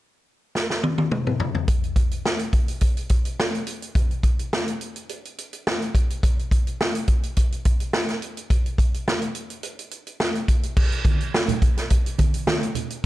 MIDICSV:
0, 0, Header, 1, 2, 480
1, 0, Start_track
1, 0, Tempo, 568182
1, 1420, Time_signature, 4, 2, 24, 8
1, 11031, End_track
2, 0, Start_track
2, 0, Title_t, "Drums"
2, 466, Note_on_c, 9, 38, 50
2, 551, Note_off_c, 9, 38, 0
2, 593, Note_on_c, 9, 38, 42
2, 678, Note_off_c, 9, 38, 0
2, 706, Note_on_c, 9, 48, 74
2, 790, Note_off_c, 9, 48, 0
2, 828, Note_on_c, 9, 48, 62
2, 913, Note_off_c, 9, 48, 0
2, 942, Note_on_c, 9, 47, 82
2, 1026, Note_off_c, 9, 47, 0
2, 1071, Note_on_c, 9, 45, 72
2, 1156, Note_off_c, 9, 45, 0
2, 1181, Note_on_c, 9, 43, 99
2, 1266, Note_off_c, 9, 43, 0
2, 1307, Note_on_c, 9, 43, 80
2, 1392, Note_off_c, 9, 43, 0
2, 1417, Note_on_c, 9, 42, 87
2, 1420, Note_on_c, 9, 36, 97
2, 1501, Note_off_c, 9, 42, 0
2, 1504, Note_off_c, 9, 36, 0
2, 1551, Note_on_c, 9, 42, 31
2, 1635, Note_off_c, 9, 42, 0
2, 1655, Note_on_c, 9, 36, 84
2, 1656, Note_on_c, 9, 42, 66
2, 1740, Note_off_c, 9, 36, 0
2, 1740, Note_off_c, 9, 42, 0
2, 1786, Note_on_c, 9, 42, 45
2, 1870, Note_off_c, 9, 42, 0
2, 1905, Note_on_c, 9, 38, 96
2, 1989, Note_off_c, 9, 38, 0
2, 2021, Note_on_c, 9, 42, 48
2, 2106, Note_off_c, 9, 42, 0
2, 2137, Note_on_c, 9, 36, 82
2, 2137, Note_on_c, 9, 42, 53
2, 2221, Note_off_c, 9, 36, 0
2, 2222, Note_off_c, 9, 42, 0
2, 2264, Note_on_c, 9, 42, 47
2, 2349, Note_off_c, 9, 42, 0
2, 2372, Note_on_c, 9, 42, 72
2, 2379, Note_on_c, 9, 36, 81
2, 2457, Note_off_c, 9, 42, 0
2, 2464, Note_off_c, 9, 36, 0
2, 2508, Note_on_c, 9, 42, 43
2, 2592, Note_off_c, 9, 42, 0
2, 2613, Note_on_c, 9, 42, 63
2, 2620, Note_on_c, 9, 36, 87
2, 2698, Note_off_c, 9, 42, 0
2, 2705, Note_off_c, 9, 36, 0
2, 2745, Note_on_c, 9, 42, 50
2, 2830, Note_off_c, 9, 42, 0
2, 2869, Note_on_c, 9, 38, 109
2, 2953, Note_off_c, 9, 38, 0
2, 2994, Note_on_c, 9, 42, 43
2, 3079, Note_off_c, 9, 42, 0
2, 3097, Note_on_c, 9, 42, 71
2, 3182, Note_off_c, 9, 42, 0
2, 3228, Note_on_c, 9, 42, 46
2, 3313, Note_off_c, 9, 42, 0
2, 3339, Note_on_c, 9, 36, 111
2, 3342, Note_on_c, 9, 42, 79
2, 3424, Note_off_c, 9, 36, 0
2, 3426, Note_off_c, 9, 42, 0
2, 3470, Note_on_c, 9, 42, 35
2, 3554, Note_off_c, 9, 42, 0
2, 3577, Note_on_c, 9, 36, 83
2, 3578, Note_on_c, 9, 42, 65
2, 3661, Note_off_c, 9, 36, 0
2, 3662, Note_off_c, 9, 42, 0
2, 3710, Note_on_c, 9, 42, 45
2, 3794, Note_off_c, 9, 42, 0
2, 3827, Note_on_c, 9, 38, 110
2, 3912, Note_off_c, 9, 38, 0
2, 3951, Note_on_c, 9, 42, 51
2, 4035, Note_off_c, 9, 42, 0
2, 4062, Note_on_c, 9, 42, 55
2, 4147, Note_off_c, 9, 42, 0
2, 4188, Note_on_c, 9, 42, 50
2, 4272, Note_off_c, 9, 42, 0
2, 4302, Note_on_c, 9, 42, 77
2, 4387, Note_off_c, 9, 42, 0
2, 4437, Note_on_c, 9, 42, 46
2, 4522, Note_off_c, 9, 42, 0
2, 4548, Note_on_c, 9, 42, 66
2, 4632, Note_off_c, 9, 42, 0
2, 4670, Note_on_c, 9, 42, 49
2, 4754, Note_off_c, 9, 42, 0
2, 4790, Note_on_c, 9, 38, 101
2, 4874, Note_off_c, 9, 38, 0
2, 4915, Note_on_c, 9, 42, 37
2, 5000, Note_off_c, 9, 42, 0
2, 5023, Note_on_c, 9, 36, 87
2, 5026, Note_on_c, 9, 42, 76
2, 5108, Note_off_c, 9, 36, 0
2, 5111, Note_off_c, 9, 42, 0
2, 5156, Note_on_c, 9, 42, 46
2, 5241, Note_off_c, 9, 42, 0
2, 5265, Note_on_c, 9, 36, 107
2, 5266, Note_on_c, 9, 42, 87
2, 5350, Note_off_c, 9, 36, 0
2, 5351, Note_off_c, 9, 42, 0
2, 5400, Note_on_c, 9, 42, 35
2, 5485, Note_off_c, 9, 42, 0
2, 5503, Note_on_c, 9, 36, 87
2, 5507, Note_on_c, 9, 42, 66
2, 5588, Note_off_c, 9, 36, 0
2, 5591, Note_off_c, 9, 42, 0
2, 5634, Note_on_c, 9, 42, 40
2, 5718, Note_off_c, 9, 42, 0
2, 5750, Note_on_c, 9, 38, 105
2, 5835, Note_off_c, 9, 38, 0
2, 5871, Note_on_c, 9, 42, 57
2, 5955, Note_off_c, 9, 42, 0
2, 5978, Note_on_c, 9, 42, 54
2, 5981, Note_on_c, 9, 36, 87
2, 6062, Note_off_c, 9, 42, 0
2, 6066, Note_off_c, 9, 36, 0
2, 6111, Note_on_c, 9, 42, 46
2, 6196, Note_off_c, 9, 42, 0
2, 6222, Note_on_c, 9, 42, 79
2, 6227, Note_on_c, 9, 36, 80
2, 6307, Note_off_c, 9, 42, 0
2, 6312, Note_off_c, 9, 36, 0
2, 6356, Note_on_c, 9, 42, 43
2, 6440, Note_off_c, 9, 42, 0
2, 6463, Note_on_c, 9, 42, 67
2, 6467, Note_on_c, 9, 36, 92
2, 6548, Note_off_c, 9, 42, 0
2, 6552, Note_off_c, 9, 36, 0
2, 6590, Note_on_c, 9, 42, 51
2, 6674, Note_off_c, 9, 42, 0
2, 6702, Note_on_c, 9, 38, 107
2, 6787, Note_off_c, 9, 38, 0
2, 6831, Note_on_c, 9, 42, 42
2, 6832, Note_on_c, 9, 38, 29
2, 6916, Note_off_c, 9, 38, 0
2, 6916, Note_off_c, 9, 42, 0
2, 6944, Note_on_c, 9, 42, 72
2, 7028, Note_off_c, 9, 42, 0
2, 7071, Note_on_c, 9, 42, 48
2, 7155, Note_off_c, 9, 42, 0
2, 7183, Note_on_c, 9, 36, 95
2, 7184, Note_on_c, 9, 42, 87
2, 7268, Note_off_c, 9, 36, 0
2, 7269, Note_off_c, 9, 42, 0
2, 7314, Note_on_c, 9, 42, 35
2, 7399, Note_off_c, 9, 42, 0
2, 7421, Note_on_c, 9, 36, 89
2, 7426, Note_on_c, 9, 42, 68
2, 7505, Note_off_c, 9, 36, 0
2, 7511, Note_off_c, 9, 42, 0
2, 7555, Note_on_c, 9, 42, 46
2, 7639, Note_off_c, 9, 42, 0
2, 7668, Note_on_c, 9, 38, 100
2, 7753, Note_off_c, 9, 38, 0
2, 7786, Note_on_c, 9, 42, 50
2, 7871, Note_off_c, 9, 42, 0
2, 7896, Note_on_c, 9, 42, 57
2, 7981, Note_off_c, 9, 42, 0
2, 8025, Note_on_c, 9, 42, 50
2, 8110, Note_off_c, 9, 42, 0
2, 8135, Note_on_c, 9, 42, 84
2, 8219, Note_off_c, 9, 42, 0
2, 8269, Note_on_c, 9, 42, 51
2, 8354, Note_off_c, 9, 42, 0
2, 8374, Note_on_c, 9, 42, 63
2, 8459, Note_off_c, 9, 42, 0
2, 8504, Note_on_c, 9, 42, 49
2, 8589, Note_off_c, 9, 42, 0
2, 8618, Note_on_c, 9, 38, 108
2, 8702, Note_off_c, 9, 38, 0
2, 8746, Note_on_c, 9, 42, 43
2, 8830, Note_off_c, 9, 42, 0
2, 8855, Note_on_c, 9, 42, 76
2, 8857, Note_on_c, 9, 36, 82
2, 8940, Note_off_c, 9, 42, 0
2, 8941, Note_off_c, 9, 36, 0
2, 8983, Note_on_c, 9, 42, 51
2, 9067, Note_off_c, 9, 42, 0
2, 9097, Note_on_c, 9, 36, 111
2, 9097, Note_on_c, 9, 49, 99
2, 9181, Note_off_c, 9, 36, 0
2, 9182, Note_off_c, 9, 49, 0
2, 9226, Note_on_c, 9, 42, 38
2, 9310, Note_off_c, 9, 42, 0
2, 9334, Note_on_c, 9, 36, 94
2, 9334, Note_on_c, 9, 42, 72
2, 9336, Note_on_c, 9, 63, 81
2, 9418, Note_off_c, 9, 36, 0
2, 9419, Note_off_c, 9, 42, 0
2, 9420, Note_off_c, 9, 63, 0
2, 9466, Note_on_c, 9, 42, 44
2, 9550, Note_off_c, 9, 42, 0
2, 9583, Note_on_c, 9, 38, 113
2, 9668, Note_off_c, 9, 38, 0
2, 9701, Note_on_c, 9, 62, 37
2, 9701, Note_on_c, 9, 64, 83
2, 9705, Note_on_c, 9, 42, 59
2, 9786, Note_off_c, 9, 62, 0
2, 9786, Note_off_c, 9, 64, 0
2, 9789, Note_off_c, 9, 42, 0
2, 9816, Note_on_c, 9, 36, 88
2, 9816, Note_on_c, 9, 42, 61
2, 9900, Note_off_c, 9, 36, 0
2, 9901, Note_off_c, 9, 42, 0
2, 9947, Note_on_c, 9, 38, 29
2, 9947, Note_on_c, 9, 42, 51
2, 10031, Note_off_c, 9, 38, 0
2, 10031, Note_off_c, 9, 42, 0
2, 10055, Note_on_c, 9, 42, 82
2, 10056, Note_on_c, 9, 62, 34
2, 10060, Note_on_c, 9, 36, 75
2, 10139, Note_off_c, 9, 42, 0
2, 10141, Note_off_c, 9, 62, 0
2, 10145, Note_off_c, 9, 36, 0
2, 10189, Note_on_c, 9, 42, 51
2, 10273, Note_off_c, 9, 42, 0
2, 10293, Note_on_c, 9, 63, 76
2, 10295, Note_on_c, 9, 42, 72
2, 10300, Note_on_c, 9, 36, 95
2, 10378, Note_off_c, 9, 63, 0
2, 10380, Note_off_c, 9, 42, 0
2, 10384, Note_off_c, 9, 36, 0
2, 10423, Note_on_c, 9, 42, 55
2, 10508, Note_off_c, 9, 42, 0
2, 10535, Note_on_c, 9, 62, 36
2, 10535, Note_on_c, 9, 63, 79
2, 10537, Note_on_c, 9, 38, 119
2, 10619, Note_off_c, 9, 62, 0
2, 10619, Note_off_c, 9, 63, 0
2, 10621, Note_off_c, 9, 38, 0
2, 10658, Note_on_c, 9, 62, 36
2, 10668, Note_on_c, 9, 42, 43
2, 10742, Note_off_c, 9, 62, 0
2, 10753, Note_off_c, 9, 42, 0
2, 10770, Note_on_c, 9, 64, 68
2, 10772, Note_on_c, 9, 42, 78
2, 10854, Note_off_c, 9, 64, 0
2, 10857, Note_off_c, 9, 42, 0
2, 10901, Note_on_c, 9, 42, 47
2, 10985, Note_off_c, 9, 42, 0
2, 11031, End_track
0, 0, End_of_file